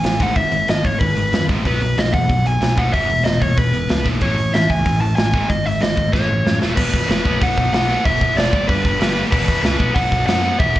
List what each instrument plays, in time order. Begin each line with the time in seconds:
Already playing: lead electric guitar G#5
0.04 picked electric bass A1, distorted electric guitar A2 E3, snare, open hi-hat
0.20 picked electric bass G#1, distorted electric guitar G#2 D#3 G#3, lead electric guitar F#5, kick, open hi-hat
0.36 picked electric bass G#1, distorted electric guitar G#2 D#3, lead electric guitar E5, kick, open hi-hat
0.51 picked electric bass G#1, distorted electric guitar G#2 D#3, open hi-hat
0.68 picked electric bass G#1, distorted electric guitar G#2 D#3, lead electric guitar D#5, snare, open hi-hat
0.84 picked electric bass G#1, distorted electric guitar G#2 D#3, lead electric guitar C#5, kick, open hi-hat
1.00 picked electric bass G#1, distorted electric guitar G#2 D#3, lead electric guitar B4, kick, open hi-hat
1.16 picked electric bass G#1, distorted electric guitar G#2 D#3, open hi-hat
1.33 picked electric bass F#2, distorted electric guitar G#2 D#3, snare, open hi-hat
1.49 picked electric bass A1, distorted electric guitar G#2 D#3 G#3, kick, open hi-hat
1.65 picked electric bass B1, distorted electric guitar B2 F#3 B3, lead electric guitar B4, kick, open hi-hat
1.82 picked electric bass B1, distorted electric guitar B2 F#3, open hi-hat
1.97 picked electric bass B1, distorted electric guitar B2 F#3, lead electric guitar D#5, snare, open hi-hat
2.12 picked electric bass E2, distorted electric guitar B2 F#3, lead electric guitar F#5, kick, open hi-hat
2.29 picked electric bass B1, distorted electric guitar B2 F#3, kick, open hi-hat
2.45 distorted electric guitar B2 F#3, lead electric guitar G#5, open hi-hat
2.61 picked electric bass B1, distorted electric guitar B2 F#3, snare, open hi-hat
2.77 picked electric bass B1, distorted electric guitar B2 F#3 B3, lead electric guitar F#5, kick, open hi-hat
2.92 picked electric bass E1, distorted electric guitar E2 B2 E3, lead electric guitar E5, kick, open hi-hat
3.08 picked electric bass E1, distorted electric guitar E2 B2, open hi-hat
3.24 picked electric bass E1, distorted electric guitar E2 B2, lead electric guitar D#5, snare, open hi-hat
3.40 picked electric bass E1, distorted electric guitar E2 B2, lead electric guitar C#5, kick, open hi-hat
3.57 picked electric bass E1, distorted electric guitar E2 B2, lead electric guitar B4, kick, open hi-hat
3.73 picked electric bass E1, distorted electric guitar E2 B2, open hi-hat
3.89 picked electric bass C#2, distorted electric guitar E2 B2, snare, open hi-hat
4.04 picked electric bass B1, distorted electric guitar E2 B2 E3, kick, open hi-hat
4.21 picked electric bass A1, distorted electric guitar A2 E3 A3, lead electric guitar C#5, kick, open hi-hat
4.37 picked electric bass A1, distorted electric guitar A2 E3, open hi-hat
4.53 picked electric bass A1, distorted electric guitar A2 E3, lead electric guitar E5, snare, open hi-hat
4.68 picked electric bass C#2, distorted electric guitar A2 E3, lead electric guitar G#5, kick, open hi-hat
4.85 picked electric bass A1, distorted electric guitar A2 E3, kick, open hi-hat
5.01 distorted electric guitar A2 E3, lead electric guitar A5, open hi-hat
5.16 picked electric bass A1, distorted electric guitar A2 E3, lead electric guitar G#5, snare, open hi-hat
5.33 picked electric bass G#1, distorted electric guitar G#2 D#3 G#3, kick, open hi-hat
5.49 picked electric bass G#1, distorted electric guitar G#2 D#3, lead electric guitar D#5, kick, open hi-hat
5.65 picked electric bass G#1, distorted electric guitar G#2 D#3, lead electric guitar E5, open hi-hat
5.80 picked electric bass G#1, distorted electric guitar G#2 D#3, lead electric guitar D#5, snare, open hi-hat
5.96 picked electric bass G#1, distorted electric guitar G#2 D#3, kick, open hi-hat
6.13 picked electric bass A1, distorted electric guitar A2 E3 A3, lead electric guitar C#5, kick, snare
6.28 picked electric bass A1, distorted electric guitar A2 E3
6.44 picked electric bass F#2, distorted electric guitar A2 E3, snare
6.61 picked electric bass E1, distorted electric guitar A2 E3 A3, snare
6.76 picked electric bass E1, distorted electric guitar E2 B2 E3, lead electric guitar B4, kick, crash
6.94 kick
7.08 picked electric bass E1, distorted electric guitar E2 B2 E3, lead electric guitar B4, snare, open hi-hat
7.25 picked electric bass B1, distorted electric guitar B2 F#3 B3, kick
7.41 picked electric bass B1, distorted electric guitar B2 F#3 B3, lead electric guitar F#5, kick, open hi-hat
7.58 picked electric bass B1, kick
7.73 picked electric bass B1, distorted electric guitar B2 F#3 B3, lead electric guitar F#5, snare, open hi-hat
7.89 distorted electric guitar B2 F#3 B3
8.04 picked electric bass E1, distorted electric guitar E2 B2 E3, lead electric guitar E5, kick, open hi-hat
8.21 kick
8.36 picked electric bass E1, distorted electric guitar E2 B2 E3, lead electric guitar D5, snare, open hi-hat
8.52 picked electric bass G1, distorted electric guitar G2 D3 G3, kick
8.67 picked electric bass G1, distorted electric guitar G2 D3 G3, lead electric guitar B4, kick, open hi-hat
8.85 picked electric bass G1, kick
9.00 picked electric bass G1, distorted electric guitar G2 D3 G3, lead electric guitar B4, snare, open hi-hat
9.15 distorted electric guitar G2 D3 G3
9.31 picked electric bass E1, distorted electric guitar E2 B2 E3, lead electric guitar B4, kick, crash
9.48 kick
9.62 picked electric bass C#2, distorted electric guitar E2 B2 E3, lead electric guitar B4, snare, open hi-hat
9.79 picked electric bass B1, distorted electric guitar B2 F#3 B3, kick
9.94 picked electric bass B1, distorted electric guitar B2 F#3 B3, lead electric guitar F#5, kick, open hi-hat
10.12 picked electric bass B1, kick
10.26 picked electric bass F#2, distorted electric guitar B2 F#3 B3, lead electric guitar F#5, snare, open hi-hat
10.43 distorted electric guitar B2 F#3 B3
10.58 picked electric bass E1, distorted electric guitar E2 B2 E3, lead electric guitar E5, kick, open hi-hat
10.76 kick